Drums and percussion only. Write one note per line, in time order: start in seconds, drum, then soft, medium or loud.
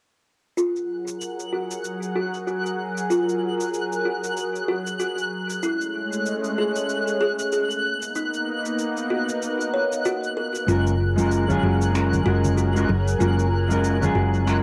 0.58 cabasa soft
0.77 cabasa soft
1.08 cabasa medium
1.21 cabasa soft
1.40 cabasa soft
1.71 cabasa medium
1.85 cabasa soft
2.03 cabasa soft
2.34 cabasa medium
2.48 cabasa soft
2.66 cabasa soft
2.98 cabasa medium
3.11 cabasa medium
3.29 cabasa soft
3.61 cabasa medium
3.74 cabasa medium
3.93 cabasa soft
4.24 cabasa medium
4.37 cabasa medium
4.55 cabasa soft
4.87 cabasa medium
5.00 cabasa soft
5.18 cabasa soft
5.50 cabasa medium
5.63 cabasa medium
5.81 cabasa soft
6.13 cabasa medium
6.26 cabasa medium
6.44 cabasa soft
6.76 cabasa medium
6.89 cabasa soft
7.08 cabasa soft
7.39 cabasa medium
7.52 cabasa soft
7.71 cabasa soft
8.02 cabasa medium
8.16 cabasa medium
8.34 cabasa soft
8.66 cabasa medium
8.79 cabasa medium
8.97 cabasa soft
9.29 cabasa medium
9.43 cabasa medium
9.61 cabasa soft
9.93 cabasa medium
10.06 cabasa soft
10.24 cabasa soft
10.55 cabasa medium
10.69 cabasa soft
10.87 cabasa soft
11.18 high conga medium
11.18 cabasa medium
11.32 cabasa medium
11.50 low conga medium
11.50 cabasa soft
11.82 cabasa medium
11.95 finger snap medium
11.95 cabasa soft
12.13 high conga medium
12.13 low conga medium
12.13 cabasa soft
12.45 low conga medium
12.45 cabasa medium
12.58 cabasa soft
12.76 cabasa soft
12.89 high conga medium
13.08 cabasa medium
13.21 cabasa soft
13.40 cabasa soft
13.70 high conga medium
13.70 cabasa medium
13.84 cabasa soft
14.02 low conga medium
14.02 cabasa soft
14.34 cabasa medium
14.47 finger snap medium
14.47 cabasa soft